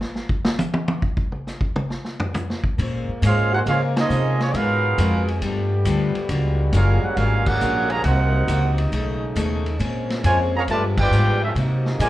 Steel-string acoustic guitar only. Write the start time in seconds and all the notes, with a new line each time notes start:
2.79 A#3 C#4 G#4 C5
3.22 A#3 C#4 G#4 C5
3.66 A#3 C#4 G#4 C5
4.10 A#3 C#4 G#4 C5
4.54 G#3 B3 F#4 A#4
4.98 G#3 B3 F#4 A#4
5.42 G3 B3 F4 A4
5.86 G3 B3 F4 A4
6.30 F#3 A#3 F4 G#4
6.74 F#3 A#3 F4 G#4
7.17 F#3 A#3 F4 G#4
7.61 F#3 A#3 F4 G#4
8.05 C3 A#3 D#4 F#4
8.49 C3 A#3 D#4 F#4
8.92 B2 A3 D#4 G#4
9.36 B2 A3 D#4 G#4
9.79 A#3 C#4 G#4 C5
10.24 A#3 C#4 G#4 C5
10.68 G3 B3 F4 G#4
11.13 G3 B3 F4 G#4
11.56 C3 A#3 D#4 F#4
12.00 C3 A#3 D#4 F#4